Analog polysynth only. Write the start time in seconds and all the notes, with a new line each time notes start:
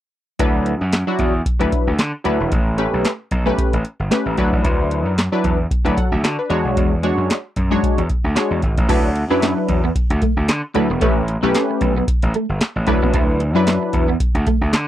0.39 F#3 D4 E4 B4
1.07 F#3 D4 E4 F#4
1.59 F#3 D4 E4 B4
2.24 F#3 D4 E4 B4
2.78 A3 C#4 G4 B4
3.46 A3 C#4 G4 B4
4.11 A3 C#4 G4 B4
4.38 F#3 D4 E4 B4
5.32 F#3 D4 E4 B4
5.85 F#3 D4 E4 B4
5.97 A4 F#5
6.12 E5
6.23 F#4 D5
6.39 D4 B4
6.49 G#3 D4 F#4 C#5
7.03 G#3 D4 F#4 C#5
7.71 G#3 D4 F#4 C#5
8.35 G#3 D4 F#4 C#5
8.89 F#3 D4 E4 B4
9.30 F#3 D4 E4 B4
10.74 F#3 D4 E4 B4
11.01 A3 C#4 G4 B4
11.43 A3 C#4 G4 B4
12.87 F#3 D4 E4 B4
13.55 F#3 D4 E4 B4